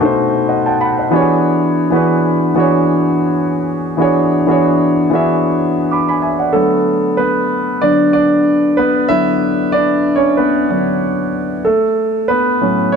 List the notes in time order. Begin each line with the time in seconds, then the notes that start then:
Already playing: A3 D#4 C5
0.00 B2 A3 D#4
0.05 C5
0.49 D#5 F#5
0.66 F#5 G5 A5
0.81 F#5 B5
0.98 D#5 F#5
1.11 E3 B3 D4 F#4 G4 G#5
1.16 C#5
1.21 G#4
1.90 E3 B3 D4 F#4
1.95 G#4 B4
2.55 E3 B3 D4 F#4 G#4
2.60 C#5
3.97 E3 B3 D4 F#4
4.01 G#4 C#5
4.47 E3 B3 D4 F#4 G#4
4.51 C#5
5.10 E3 B3 D4 F#4
5.14 G#4 E5
5.91 B5 D6
6.08 G#5 B5
6.22 E5 G#5
6.39 D5 F#5
6.53 D3 F#3 A3 B3 A4
7.17 B3 B4
7.82 D3 F#3 B3 D4 D5
8.13 D4 D5
8.77 B3 B4
9.09 D3 F#3 B3 E4 E5
9.72 D4 D5
10.16 C#4 C#5
10.37 B3 B4
10.70 D3 F#3 B3
11.65 A3 A4
12.28 B3 B4
12.61 A2 F#3 C#4
12.92 C#5